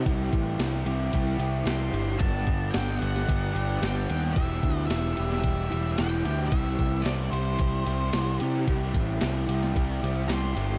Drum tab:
RD |x-x-x-x-x-x-x-x-|x-x-x-x-x-x-x-x-|x-x-x-x-x-x-x-x-|x-x-x-x-x-x-x-x-|
SD |----o-------o---|----oo-o----o---|----o--o----o---|----o-------o---|
BD |o-o-----o-------|o-o-----o-------|o-o-----o-------|o-o-----o-------|

RD |x-x-x-x-x-x-x-x-|
SD |----o--o----o---|
BD |o-o-----o-------|